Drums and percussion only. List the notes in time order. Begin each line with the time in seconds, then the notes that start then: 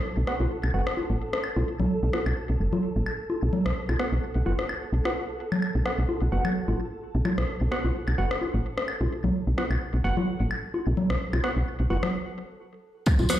0.27 cross-stick
0.40 low bongo
0.64 claves
0.87 cross-stick
0.97 low bongo
1.33 cross-stick
1.44 claves
1.56 low bongo
1.80 low conga
2.13 cross-stick, low bongo
2.26 claves
2.73 low bongo, low conga
3.06 claves
3.30 low bongo
3.53 low conga
3.66 cross-stick
3.89 low bongo, claves
3.99 cross-stick
4.46 low bongo
4.59 cross-stick
4.69 claves
5.05 cross-stick, low bongo
5.52 low conga, claves
5.62 claves
5.86 cross-stick
6.09 low bongo
6.45 low conga, claves
6.68 low bongo
7.25 low bongo, low conga, claves
7.38 cross-stick
7.72 cross-stick
7.84 low bongo
8.08 claves
8.31 cross-stick
8.41 low bongo
8.78 cross-stick
8.88 claves
9.01 low bongo
9.24 low conga
9.58 cross-stick, low bongo
9.71 claves
10.17 low bongo, low conga
10.51 claves
10.74 low bongo
10.97 low conga
11.10 cross-stick
11.33 low bongo, claves
11.44 cross-stick
11.90 low bongo
12.03 cross-stick, low conga
13.06 kick, closed hi-hat, tambourine, claves
13.19 tambourine, low bongo
13.29 cross-stick, open hi-hat, tambourine, low conga